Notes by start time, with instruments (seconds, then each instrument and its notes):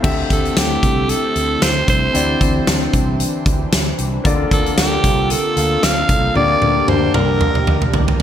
0.02 fretless electric bass D2, analog synth pad D3 A3 C4 E4 G4, grand piano D3 C4 G4 A4 E5, kick, crash
0.30 fretless electric bass D2, alto saxophone A4, kick, closed hi-hat
0.45 closed hi-hat
0.57 fretless electric bass D2, alto saxophone G4, snare, closed hi-hat
0.83 fretless electric bass C2, kick, closed hi-hat
1.09 alto saxophone A4, closed hi-hat
1.36 fretless electric bass D2, closed hi-hat
1.62 fretless electric bass D2, alto saxophone C5, snare, closed hi-hat
1.88 fretless electric bass C2, alto saxophone C5, kick, closed hi-hat
2.13 fretless electric bass D2, grand piano D3 C4 E4 G4 D5, analog synth pad E3 D4, closed hi-hat
2.41 fretless electric bass D2, kick, closed hi-hat
2.67 fretless electric bass D2, snare, closed hi-hat
2.94 fretless electric bass C2, kick, closed hi-hat
3.20 closed hi-hat
3.46 fretless electric bass D2, kick, closed hi-hat
3.72 fretless electric bass D2, snare, closed hi-hat
3.98 fretless electric bass C2, closed hi-hat
4.24 fretless electric bass D2, analog synth pad D3 A#3 F4 A4, grand piano D3 A#3 F4 A4 D5, kick, closed hi-hat
4.51 fretless electric bass D2, alto saxophone A4, kick, closed hi-hat
4.66 closed hi-hat
4.77 fretless electric bass D2, alto saxophone G4, snare, closed hi-hat
5.04 fretless electric bass C2, kick, closed hi-hat
5.30 alto saxophone A4, closed hi-hat
5.56 fretless electric bass D2, grand piano A#3 F4 A4 F5, closed hi-hat
5.83 fretless electric bass D2, alto saxophone F5, snare, closed hi-hat
6.09 fretless electric bass C2, kick, closed hi-hat
6.34 fretless electric bass D2, grand piano D3 A#3 D4 G4 D5, analog synth pad D4 G4, alto saxophone D5, high tom
6.62 fretless electric bass D2, high tom
6.88 fretless electric bass D2, alto saxophone C5, mid tom
7.14 fretless electric bass C2, alto saxophone A#4, mid tom
7.41 mid tom
7.55 mid tom
7.67 fretless electric bass D2, mid tom
7.82 mid tom
7.94 fretless electric bass D2, floor tom
8.08 floor tom